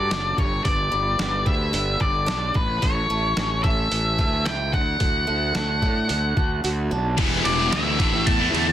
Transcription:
Already playing: steel-string acoustic guitar D3 F#3 A3, lead electric guitar D5
0.11 fingered electric bass F#1, steel-string acoustic guitar D4, snare, open hi-hat
0.38 fingered electric bass G1, steel-string acoustic guitar G2, lead electric guitar C#5, kick
0.65 fingered electric bass G1, steel-string acoustic guitar G2, lead electric guitar D5, kick, open hi-hat
0.92 fingered electric bass G1, steel-string acoustic guitar G3
1.19 fingered electric bass G1, steel-string acoustic guitar B3, snare, open hi-hat
1.46 fingered electric bass D2, steel-string acoustic guitar G3, lead electric guitar E5, kick
1.73 fingered electric bass G1, steel-string acoustic guitar D3, open hi-hat
2.00 fingered electric bass G1, steel-string acoustic guitar G3, lead electric guitar D5, kick
2.26 fingered electric bass B1, steel-string acoustic guitar D4, snare, open hi-hat
2.54 fingered electric bass A1, steel-string acoustic guitar A2, lead electric guitar B4, kick
2.82 fingered electric bass A1, steel-string acoustic guitar A2, lead electric guitar C#5, kick, open hi-hat
3.10 fingered electric bass A1, steel-string acoustic guitar A3
3.37 fingered electric bass A1, steel-string acoustic guitar C#4, snare, open hi-hat
3.63 steel-string acoustic guitar A3, lead electric guitar E5, kick
3.91 fingered electric bass A1, steel-string acoustic guitar E3, open hi-hat
4.18 fingered electric bass D2, steel-string acoustic guitar A3, kick
4.45 fingered electric bass C#2, steel-string acoustic guitar E4, lead electric guitar G5, snare, open hi-hat
4.73 fingered electric bass D2, steel-string acoustic guitar D3, lead electric guitar F#5, kick
5.00 fingered electric bass D2, steel-string acoustic guitar D3, kick, open hi-hat
5.27 fingered electric bass D2, steel-string acoustic guitar A3
5.55 fingered electric bass D2, steel-string acoustic guitar D4, snare, open hi-hat
5.82 fingered electric bass A2, steel-string acoustic guitar A3, kick
6.09 fingered electric bass D2, steel-string acoustic guitar D3, open hi-hat
6.37 fingered electric bass D2, steel-string acoustic guitar A3, kick
6.64 fingered electric bass D2, steel-string acoustic guitar F#4, open hi-hat
6.91 fingered electric bass B1, steel-string acoustic guitar D4
7.17 fingered electric bass E1, distorted electric guitar E3 G3 B3 E4, kick, crash, ride
7.45 fingered electric bass E1, lead electric guitar D5, ride
7.58 distorted electric guitar G3 B3 E4
7.71 fingered electric bass D2, distorted electric guitar E3 G3 B3 E4, lead electric guitar E5, snare, ride
7.85 distorted electric guitar G3 B3 E4
7.99 fingered electric bass A1, distorted electric guitar A2 D3 E3 A3 E4, kick, ride
8.14 muted distorted electric guitar stroke, snare
8.26 fingered electric bass E2, lead electric guitar A5, kick, ride
8.39 distorted electric guitar E3 A3 E4
8.53 fingered electric bass E2, distorted electric guitar D3 E3 A3 E4, ride
8.68 muted distorted electric guitar stroke

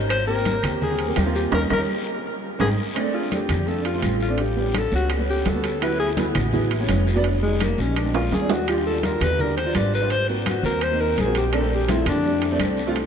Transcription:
Already playing: upright bass G#1
0.09 alto saxophone C5, high conga, high timbale, long guiro, claves, maracas
0.26 grand piano A#3 C4 G4, alto saxophone A#4, high conga, maracas
0.45 high conga, high timbale, short guiro, maracas
0.62 upright bass D#2, grand piano A#3 C4 G4, high conga, low conga, high timbale, short guiro, claves, maracas
0.82 alto saxophone G#4, high conga, low conga, long guiro, maracas
0.89 grand piano A#3 C4 G4
0.99 high timbale, maracas
1.06 grand piano A#3 C4 G4
1.16 upright bass D#2, high conga, high timbale, low timbale, short guiro, claves, maracas
1.24 grand piano A#3 C4 F4
1.35 alto saxophone G4, short guiro, maracas
1.51 upright bass D#2, grand piano A#3 C#4 D#4, alto saxophone A#4, high conga, high timbale, long guiro, claves, maracas
1.69 upright bass D#2, grand piano A#3 C#4 D#4, alto saxophone A#4, high conga, high timbale, long guiro, claves, maracas
2.59 upright bass G#1, grand piano G#3 C4 D#4, alto saxophone G#4, high conga, high timbale, long guiro, claves, maracas
2.94 grand piano A3 C4 D4, high conga, high timbale, long guiro, claves, maracas
3.13 alto saxophone F4, high conga, maracas
3.30 grand piano A3 C4 D4, alto saxophone G4, high conga, high timbale, short guiro, maracas
3.49 upright bass F2, high conga, low conga, high timbale, short guiro, claves, maracas
3.66 grand piano A3 C4 D4, alto saxophone A4, high conga, long guiro, maracas
3.85 alto saxophone F4, high conga, high timbale, maracas
3.93 grand piano A3 C4 F4
4.02 upright bass A1, high conga, high timbale, short guiro, claves, maracas
4.20 alto saxophone F4, short guiro, maracas
4.28 grand piano A3 C4 D4
4.38 alto saxophone G4, high conga, high timbale, long guiro, maracas
4.54 grand piano G3 B3 C#4, high conga, maracas
4.74 alto saxophone A4, high conga, high timbale, short guiro, claves, maracas
4.91 upright bass C#2, grand piano G3 B3 C#4, high conga, short guiro, maracas
4.95 alto saxophone F#4
5.10 high conga, high timbale, long guiro, claves, maracas
5.17 grand piano G3 B3 C#4
5.28 alto saxophone G4, high conga, maracas
5.46 upright bass D2, alto saxophone A4, high conga, high timbale, low timbale, short guiro, maracas
5.53 grand piano G3 B3 C#4
5.64 high conga, high timbale, short guiro, maracas
5.80 grand piano F#3 B3 E4, alto saxophone B4, high conga, high timbale, long guiro, claves, maracas
5.99 alto saxophone G#4, high conga, maracas
6.17 grand piano F#3 B3 E4, high conga, high timbale, short guiro, maracas
6.35 upright bass A1, high conga, low conga, high timbale, short guiro, claves, maracas
6.52 grand piano F#3 B3 E4, high conga, low conga, long guiro, maracas
6.71 high conga, high timbale, maracas
6.79 grand piano F#3 B3 C#4
6.89 upright bass F1, high conga, high timbale, low timbale, short guiro, claves, maracas
7.07 short guiro, maracas
7.14 grand piano F#3 B3 D4
7.24 high conga, high timbale, long guiro, maracas
7.41 grand piano G3 G#3 D#4, alto saxophone G#3, high conga, maracas
7.60 alto saxophone A#3, high conga, high timbale, short guiro, claves, maracas
7.77 upright bass A#1, grand piano G3 G#3 D#4, alto saxophone C#4, high conga, short guiro, maracas
7.96 alto saxophone D4, high conga, high timbale, long guiro, claves, maracas
8.04 grand piano G#3 C4 D4
8.14 alto saxophone F4, high conga, high timbale, maracas
8.32 upright bass D#2, alto saxophone G#4, high conga, high timbale, short guiro, maracas
8.40 grand piano G#3 C4 D4
8.49 alto saxophone F#4, high conga, low timbale, short guiro, maracas
8.67 grand piano G3 D4 F4, alto saxophone G4, high conga, high timbale, long guiro, claves, maracas
8.86 alto saxophone A4, high conga, maracas
9.02 grand piano G3 D4 F4, alto saxophone A#4, high conga, high timbale, short guiro, maracas
9.21 upright bass D#2, alto saxophone B4, high conga, low conga, high timbale, short guiro, claves, maracas
9.39 grand piano G3 D4 G4, alto saxophone A#4, high conga, low conga, long guiro, maracas
9.57 alto saxophone C5, high conga, high timbale, maracas
9.65 grand piano G3 D4 F4
9.75 upright bass G#1, alto saxophone D5, high conga, high timbale, short guiro, claves, maracas
9.93 alto saxophone B4, short guiro, maracas
10.01 grand piano G3 D4 F4
10.10 alto saxophone C5, high conga, high timbale, long guiro, maracas
10.27 grand piano A#3 C4 F#4, alto saxophone D#4, high conga, maracas
10.46 alto saxophone F#4, high conga, high timbale, short guiro, claves, maracas
10.63 upright bass D#2, grand piano A#3 C4 F#4, alto saxophone A#4, high conga, short guiro, maracas
10.81 alto saxophone C5, high conga, high timbale, long guiro, claves, maracas
10.90 grand piano A#3 C4 D#4
11.00 alto saxophone A#4, high conga, maracas
11.18 upright bass A#1, alto saxophone G#4, high conga, high timbale, short guiro, maracas
11.25 grand piano A#3 C4 F#4
11.35 alto saxophone G4, high conga, high timbale, short guiro, maracas
11.52 grand piano A3 C4 D4, alto saxophone A4, high conga, high timbale, long guiro, claves, maracas
11.71 high conga, maracas
11.75 alto saxophone G4
11.87 grand piano A3 C4 F4, alto saxophone E4, high conga, high timbale, short guiro, maracas
12.06 upright bass F2, alto saxophone D4, high conga, low conga, high timbale, short guiro, claves, maracas
12.23 grand piano A3 C4 D4, high conga, long guiro, maracas
12.42 high conga, high timbale, maracas
12.50 grand piano A3 C4 D4
12.59 upright bass C2, high conga, high timbale, short guiro, claves, maracas
12.77 short guiro, maracas
12.86 grand piano A3 C4 F4
12.95 high conga, high timbale, long guiro, maracas

